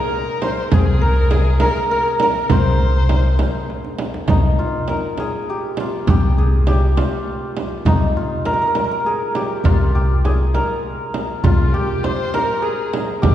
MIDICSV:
0, 0, Header, 1, 6, 480
1, 0, Start_track
1, 0, Tempo, 596421
1, 574, Time_signature, 6, 3, 24, 8
1, 10743, End_track
2, 0, Start_track
2, 0, Title_t, "Kamancheh"
2, 0, Program_c, 0, 110
2, 0, Note_on_c, 0, 70, 85
2, 334, Note_on_c, 0, 72, 77
2, 346, Note_off_c, 0, 70, 0
2, 567, Note_off_c, 0, 72, 0
2, 572, Note_on_c, 0, 68, 75
2, 638, Note_on_c, 0, 67, 65
2, 650, Note_off_c, 0, 68, 0
2, 685, Note_on_c, 0, 68, 76
2, 697, Note_off_c, 0, 67, 0
2, 818, Note_on_c, 0, 70, 82
2, 830, Note_off_c, 0, 68, 0
2, 1052, Note_on_c, 0, 68, 71
2, 1064, Note_off_c, 0, 70, 0
2, 1281, Note_off_c, 0, 68, 0
2, 1285, Note_on_c, 0, 70, 83
2, 1511, Note_off_c, 0, 70, 0
2, 1528, Note_on_c, 0, 70, 73
2, 1752, Note_off_c, 0, 70, 0
2, 1776, Note_on_c, 0, 70, 69
2, 2016, Note_on_c, 0, 72, 72
2, 2028, Note_off_c, 0, 70, 0
2, 2970, Note_off_c, 0, 72, 0
2, 9212, Note_on_c, 0, 65, 63
2, 9441, Note_on_c, 0, 67, 69
2, 9453, Note_off_c, 0, 65, 0
2, 9686, Note_on_c, 0, 72, 77
2, 9698, Note_off_c, 0, 67, 0
2, 9935, Note_on_c, 0, 70, 80
2, 9947, Note_off_c, 0, 72, 0
2, 10172, Note_on_c, 0, 68, 68
2, 10184, Note_off_c, 0, 70, 0
2, 10413, Note_off_c, 0, 68, 0
2, 10659, Note_on_c, 0, 67, 65
2, 10743, Note_off_c, 0, 67, 0
2, 10743, End_track
3, 0, Start_track
3, 0, Title_t, "Santur"
3, 0, Program_c, 1, 15
3, 0, Note_on_c, 1, 68, 84
3, 0, Note_on_c, 1, 70, 94
3, 0, Note_on_c, 1, 72, 85
3, 345, Note_off_c, 1, 72, 0
3, 348, Note_on_c, 1, 72, 86
3, 590, Note_off_c, 1, 68, 0
3, 594, Note_on_c, 1, 68, 94
3, 813, Note_off_c, 1, 70, 0
3, 816, Note_on_c, 1, 70, 82
3, 1058, Note_off_c, 1, 68, 0
3, 1061, Note_on_c, 1, 68, 87
3, 1292, Note_off_c, 1, 70, 0
3, 1295, Note_on_c, 1, 70, 97
3, 1536, Note_off_c, 1, 70, 0
3, 1539, Note_on_c, 1, 70, 88
3, 1787, Note_off_c, 1, 70, 0
3, 1790, Note_on_c, 1, 70, 82
3, 2020, Note_off_c, 1, 72, 0
3, 2023, Note_on_c, 1, 72, 88
3, 3455, Note_on_c, 1, 63, 78
3, 3505, Note_off_c, 1, 68, 0
3, 3693, Note_on_c, 1, 65, 71
3, 3934, Note_off_c, 1, 70, 0
3, 3937, Note_on_c, 1, 70, 75
3, 4147, Note_off_c, 1, 72, 0
3, 4182, Note_on_c, 1, 68, 82
3, 4424, Note_on_c, 1, 67, 71
3, 4472, Note_off_c, 1, 68, 0
3, 4665, Note_off_c, 1, 65, 0
3, 4668, Note_on_c, 1, 65, 68
3, 4904, Note_off_c, 1, 67, 0
3, 4907, Note_on_c, 1, 67, 88
3, 5137, Note_on_c, 1, 68, 71
3, 5185, Note_off_c, 1, 67, 0
3, 5376, Note_on_c, 1, 67, 84
3, 5425, Note_off_c, 1, 68, 0
3, 5607, Note_off_c, 1, 65, 0
3, 5610, Note_on_c, 1, 65, 77
3, 6217, Note_off_c, 1, 70, 0
3, 6333, Note_off_c, 1, 63, 0
3, 6336, Note_on_c, 1, 63, 84
3, 6569, Note_off_c, 1, 65, 0
3, 6573, Note_on_c, 1, 65, 69
3, 6808, Note_on_c, 1, 70, 93
3, 6864, Note_off_c, 1, 70, 0
3, 6867, Note_on_c, 1, 70, 64
3, 6931, Note_off_c, 1, 70, 0
3, 6934, Note_on_c, 1, 70, 73
3, 6976, Note_off_c, 1, 70, 0
3, 6979, Note_on_c, 1, 70, 59
3, 7045, Note_off_c, 1, 70, 0
3, 7048, Note_on_c, 1, 70, 76
3, 7113, Note_off_c, 1, 70, 0
3, 7116, Note_on_c, 1, 70, 71
3, 7170, Note_off_c, 1, 70, 0
3, 7174, Note_on_c, 1, 70, 72
3, 7292, Note_on_c, 1, 68, 81
3, 7340, Note_off_c, 1, 67, 0
3, 7533, Note_on_c, 1, 67, 74
3, 7582, Note_off_c, 1, 68, 0
3, 7769, Note_off_c, 1, 65, 0
3, 7772, Note_on_c, 1, 65, 89
3, 8005, Note_off_c, 1, 67, 0
3, 8008, Note_on_c, 1, 67, 74
3, 8251, Note_on_c, 1, 68, 83
3, 8299, Note_off_c, 1, 67, 0
3, 8484, Note_off_c, 1, 70, 0
3, 8488, Note_on_c, 1, 70, 86
3, 9200, Note_off_c, 1, 65, 0
3, 9204, Note_on_c, 1, 65, 89
3, 9242, Note_off_c, 1, 63, 0
3, 9447, Note_on_c, 1, 67, 80
3, 9496, Note_off_c, 1, 68, 0
3, 9691, Note_on_c, 1, 72, 90
3, 9932, Note_off_c, 1, 70, 0
3, 9935, Note_on_c, 1, 70, 95
3, 10157, Note_on_c, 1, 68, 77
3, 10205, Note_off_c, 1, 67, 0
3, 10639, Note_on_c, 1, 67, 80
3, 10687, Note_off_c, 1, 68, 0
3, 10743, Note_off_c, 1, 65, 0
3, 10743, Note_off_c, 1, 67, 0
3, 10743, Note_off_c, 1, 70, 0
3, 10743, Note_off_c, 1, 72, 0
3, 10743, End_track
4, 0, Start_track
4, 0, Title_t, "Upright bass"
4, 0, Program_c, 2, 32
4, 579, Note_on_c, 2, 36, 97
4, 1309, Note_off_c, 2, 36, 0
4, 2011, Note_on_c, 2, 36, 96
4, 2743, Note_off_c, 2, 36, 0
4, 3444, Note_on_c, 2, 36, 91
4, 3629, Note_off_c, 2, 36, 0
4, 4887, Note_on_c, 2, 36, 100
4, 5621, Note_off_c, 2, 36, 0
4, 6320, Note_on_c, 2, 36, 100
4, 6506, Note_off_c, 2, 36, 0
4, 7758, Note_on_c, 2, 36, 97
4, 8497, Note_off_c, 2, 36, 0
4, 9205, Note_on_c, 2, 36, 94
4, 9391, Note_off_c, 2, 36, 0
4, 10649, Note_on_c, 2, 36, 95
4, 10743, Note_off_c, 2, 36, 0
4, 10743, End_track
5, 0, Start_track
5, 0, Title_t, "Frame drum"
5, 337, Note_on_c, 9, 64, 69
5, 418, Note_off_c, 9, 64, 0
5, 576, Note_on_c, 9, 64, 96
5, 657, Note_off_c, 9, 64, 0
5, 1052, Note_on_c, 9, 64, 77
5, 1133, Note_off_c, 9, 64, 0
5, 1287, Note_on_c, 9, 64, 77
5, 1367, Note_off_c, 9, 64, 0
5, 1768, Note_on_c, 9, 64, 80
5, 1848, Note_off_c, 9, 64, 0
5, 2009, Note_on_c, 9, 64, 89
5, 2089, Note_off_c, 9, 64, 0
5, 2489, Note_on_c, 9, 64, 75
5, 2570, Note_off_c, 9, 64, 0
5, 2728, Note_on_c, 9, 64, 75
5, 2808, Note_off_c, 9, 64, 0
5, 3207, Note_on_c, 9, 64, 68
5, 3288, Note_off_c, 9, 64, 0
5, 3442, Note_on_c, 9, 64, 86
5, 3523, Note_off_c, 9, 64, 0
5, 3925, Note_on_c, 9, 64, 67
5, 4005, Note_off_c, 9, 64, 0
5, 4165, Note_on_c, 9, 64, 67
5, 4246, Note_off_c, 9, 64, 0
5, 4644, Note_on_c, 9, 64, 71
5, 4725, Note_off_c, 9, 64, 0
5, 4889, Note_on_c, 9, 64, 90
5, 4969, Note_off_c, 9, 64, 0
5, 5367, Note_on_c, 9, 64, 74
5, 5448, Note_off_c, 9, 64, 0
5, 5613, Note_on_c, 9, 64, 75
5, 5693, Note_off_c, 9, 64, 0
5, 6089, Note_on_c, 9, 64, 71
5, 6169, Note_off_c, 9, 64, 0
5, 6325, Note_on_c, 9, 64, 92
5, 6406, Note_off_c, 9, 64, 0
5, 6804, Note_on_c, 9, 64, 70
5, 6885, Note_off_c, 9, 64, 0
5, 7042, Note_on_c, 9, 64, 68
5, 7123, Note_off_c, 9, 64, 0
5, 7525, Note_on_c, 9, 64, 66
5, 7606, Note_off_c, 9, 64, 0
5, 7765, Note_on_c, 9, 64, 83
5, 7846, Note_off_c, 9, 64, 0
5, 8249, Note_on_c, 9, 64, 64
5, 8330, Note_off_c, 9, 64, 0
5, 8487, Note_on_c, 9, 64, 64
5, 8568, Note_off_c, 9, 64, 0
5, 8967, Note_on_c, 9, 64, 65
5, 9048, Note_off_c, 9, 64, 0
5, 9209, Note_on_c, 9, 64, 87
5, 9290, Note_off_c, 9, 64, 0
5, 9691, Note_on_c, 9, 64, 69
5, 9771, Note_off_c, 9, 64, 0
5, 9931, Note_on_c, 9, 64, 69
5, 10011, Note_off_c, 9, 64, 0
5, 10410, Note_on_c, 9, 64, 72
5, 10490, Note_off_c, 9, 64, 0
5, 10648, Note_on_c, 9, 64, 87
5, 10729, Note_off_c, 9, 64, 0
5, 10743, End_track
6, 0, Start_track
6, 0, Title_t, "Tombak"
6, 344, Note_on_c, 9, 63, 64
6, 424, Note_off_c, 9, 63, 0
6, 583, Note_on_c, 9, 64, 89
6, 663, Note_off_c, 9, 64, 0
6, 1059, Note_on_c, 9, 63, 65
6, 1140, Note_off_c, 9, 63, 0
6, 1175, Note_on_c, 9, 62, 30
6, 1255, Note_off_c, 9, 62, 0
6, 1293, Note_on_c, 9, 63, 62
6, 1373, Note_off_c, 9, 63, 0
6, 1777, Note_on_c, 9, 63, 66
6, 1858, Note_off_c, 9, 63, 0
6, 2015, Note_on_c, 9, 64, 73
6, 2096, Note_off_c, 9, 64, 0
6, 2140, Note_on_c, 9, 62, 25
6, 2220, Note_off_c, 9, 62, 0
6, 2256, Note_on_c, 9, 62, 27
6, 2337, Note_off_c, 9, 62, 0
6, 2494, Note_on_c, 9, 63, 62
6, 2575, Note_off_c, 9, 63, 0
6, 2619, Note_on_c, 9, 62, 26
6, 2699, Note_off_c, 9, 62, 0
6, 2736, Note_on_c, 9, 63, 63
6, 2816, Note_off_c, 9, 63, 0
6, 2977, Note_on_c, 9, 63, 55
6, 3058, Note_off_c, 9, 63, 0
6, 3094, Note_on_c, 9, 62, 62
6, 3174, Note_off_c, 9, 62, 0
6, 3213, Note_on_c, 9, 63, 71
6, 3293, Note_off_c, 9, 63, 0
6, 3333, Note_on_c, 9, 62, 85
6, 3414, Note_off_c, 9, 62, 0
6, 3452, Note_on_c, 9, 64, 73
6, 3533, Note_off_c, 9, 64, 0
6, 3575, Note_on_c, 9, 62, 22
6, 3656, Note_off_c, 9, 62, 0
6, 3932, Note_on_c, 9, 63, 56
6, 4012, Note_off_c, 9, 63, 0
6, 4048, Note_on_c, 9, 62, 25
6, 4129, Note_off_c, 9, 62, 0
6, 4171, Note_on_c, 9, 63, 63
6, 4251, Note_off_c, 9, 63, 0
6, 4415, Note_on_c, 9, 62, 23
6, 4496, Note_off_c, 9, 62, 0
6, 4651, Note_on_c, 9, 63, 61
6, 4731, Note_off_c, 9, 63, 0
6, 4891, Note_on_c, 9, 64, 86
6, 4972, Note_off_c, 9, 64, 0
6, 5015, Note_on_c, 9, 62, 25
6, 5096, Note_off_c, 9, 62, 0
6, 5371, Note_on_c, 9, 63, 63
6, 5452, Note_off_c, 9, 63, 0
6, 5494, Note_on_c, 9, 62, 25
6, 5574, Note_off_c, 9, 62, 0
6, 5615, Note_on_c, 9, 63, 63
6, 5695, Note_off_c, 9, 63, 0
6, 5854, Note_on_c, 9, 62, 24
6, 5935, Note_off_c, 9, 62, 0
6, 6092, Note_on_c, 9, 63, 65
6, 6172, Note_off_c, 9, 63, 0
6, 6328, Note_on_c, 9, 64, 75
6, 6409, Note_off_c, 9, 64, 0
6, 6808, Note_on_c, 9, 63, 65
6, 6888, Note_off_c, 9, 63, 0
6, 6926, Note_on_c, 9, 62, 24
6, 7007, Note_off_c, 9, 62, 0
6, 7042, Note_on_c, 9, 63, 62
6, 7122, Note_off_c, 9, 63, 0
6, 7282, Note_on_c, 9, 62, 23
6, 7362, Note_off_c, 9, 62, 0
6, 7525, Note_on_c, 9, 63, 65
6, 7605, Note_off_c, 9, 63, 0
6, 7761, Note_on_c, 9, 64, 84
6, 7842, Note_off_c, 9, 64, 0
6, 7888, Note_on_c, 9, 62, 23
6, 7968, Note_off_c, 9, 62, 0
6, 8246, Note_on_c, 9, 63, 63
6, 8327, Note_off_c, 9, 63, 0
6, 8366, Note_on_c, 9, 62, 25
6, 8447, Note_off_c, 9, 62, 0
6, 8485, Note_on_c, 9, 63, 61
6, 8565, Note_off_c, 9, 63, 0
6, 8725, Note_on_c, 9, 62, 23
6, 8806, Note_off_c, 9, 62, 0
6, 8966, Note_on_c, 9, 63, 59
6, 9047, Note_off_c, 9, 63, 0
6, 9204, Note_on_c, 9, 64, 83
6, 9285, Note_off_c, 9, 64, 0
6, 9332, Note_on_c, 9, 62, 25
6, 9412, Note_off_c, 9, 62, 0
6, 9690, Note_on_c, 9, 63, 57
6, 9770, Note_off_c, 9, 63, 0
6, 9814, Note_on_c, 9, 62, 25
6, 9895, Note_off_c, 9, 62, 0
6, 9929, Note_on_c, 9, 63, 54
6, 10010, Note_off_c, 9, 63, 0
6, 10175, Note_on_c, 9, 62, 26
6, 10255, Note_off_c, 9, 62, 0
6, 10413, Note_on_c, 9, 63, 52
6, 10494, Note_off_c, 9, 63, 0
6, 10654, Note_on_c, 9, 64, 77
6, 10735, Note_off_c, 9, 64, 0
6, 10743, End_track
0, 0, End_of_file